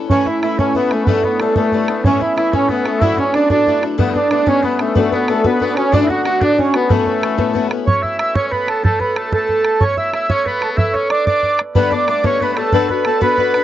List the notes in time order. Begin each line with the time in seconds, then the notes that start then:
Already playing: C#4 E4 A4 B4 D5 F#5
0.10 A2 E3 A3 C#4 E4, bodhran
0.26 A3 C#4 E4, bodhran
0.42 E3 A3 C#4 E4, bodhran
0.58 A2 E3 A3 C#4 E4, bodhran
0.74 E3 A3 B3 C#4 E4, bodhran
0.91 A3 C#4 E4, bodhran
1.04 G3 A3 B3, bodhran
1.08 A3 B3 D4
1.23 A3 B3 D4, bodhran
1.40 G3 A3 B3 D4, bodhran
1.55 G3 A3 B3 D4, bodhran
1.72 G3 A3 B3 D4, bodhran
1.88 A3 B3 D4, bodhran
2.04 A2 E3 A3 C#4 E4, bodhran
2.20 A3 C#4 E4, bodhran
2.36 E3 A3 C#4 E4, bodhran
2.52 A2 E3 A3 C#4 E4, bodhran
2.68 E3 A3 B3 C#4 E4, bodhran
2.85 A3 C#4 E4, bodhran
3.01 D2 A2 F#3 A3 D4 E4, bodhran
3.17 F#3 A3 C#4 D4 E4, bodhran
3.34 F#3 A3 D4 E4, bodhran
3.50 D2 A2 F#3 A3 D4 E4, bodhran
3.66 F#3 A3 D4 E4, bodhran
3.81 F#3 A3 D4 E4, bodhran
3.98 G2 D3 G3 A3 B3 D4, bodhran
4.10 D4 E4
4.15 G3 A3 B3 D4, bodhran
4.30 G3 A3 B3 D4, bodhran
4.46 G2 D3 G3 A3 B3 C#4 D4, bodhran
4.62 G3 A3 B3 D4, bodhran
4.75 B3
4.79 G3 A3 B3 D4, bodhran
4.95 A3 B3 D4 F#4 B4, bodhran
5.12 B3 D4 F#4 B4, bodhran
5.27 A3 B3 D4 F#4 B4, bodhran
5.44 B3 D4 F#4 B4, bodhran
5.59 B3 D4 F#4 B4, bodhran
5.72 D4
5.76 C#4 D4 F#4 B4, bodhran
5.92 D2 A2 D3 A3 D4 F#4, bodhran
6.04 E4 F#4
6.08 D3 A3 D4 F#4, bodhran
6.24 D3 A3 D4 F#4, bodhran
6.41 D2 A2 D3 A3 D4 F#4, bodhran
6.56 D3 A3 C#4 D4 F#4, bodhran
6.74 D3 A3 B3 D4 F#4, bodhran
6.89 A2 E3 A3 B3 C#4 E4, bodhran
7.05 B3 C#4 E4, bodhran
7.21 E3 B3 C#4 E4, bodhran
7.38 A2 E3 B3 C#4 E4, bodhran
7.53 E3 B3 C#4 E4, bodhran
7.70 B3 C#4 E4, bodhran
7.87 C#4 C#5, bodhran
8.02 E4 E5, bodhran
8.18 E4 E5, bodhran
8.35 C#4 C#5, bodhran
8.47 B4 C#5
8.52 B3 B4, bodhran
8.67 A4, bodhran
8.84 A3 A4, bodhran
8.99 B3 B4, bodhran
9.16 A3 A4, bodhran
9.31 A3 A4, bodhran
9.49 bodhran
9.65 bodhran
9.81 C#4 C#5, bodhran
9.97 E4 E5, bodhran
10.13 E4 E5, bodhran
10.29 C#4 C#5, bodhran
10.45 B3 B4, bodhran
10.61 A4, bodhran
10.77 E4 E5, bodhran
10.93 C#4 C#5, bodhran
11.10 D4 D5, bodhran
11.27 D4 D5, bodhran
11.43 bodhran
11.59 bodhran
11.75 G2 D3 G3 A3 B3 D4 B4, bodhran
11.91 G3 A3 B3 D4 D5, bodhran
12.07 G3 A3 B3 D4 D5, bodhran
12.23 G2 D3 G3 A3 B3 C#4 D4 C#5, bodhran
12.40 G3 A3 B3 D4 B4, bodhran
12.53 A3 D4 B4
12.57 G3 A3 B3 A4, bodhran
12.72 A3 B3 D4 F#4 A4 B4, bodhran
12.89 B3 D4 F#4 B4, bodhran
13.05 A3 B3 D4 F#4 A4 B4, bodhran
13.20 B3 D4 F#4 B4, bodhran
13.38 B3 D4 F#4 B4, bodhran
13.54 D4 F#4 B4, bodhran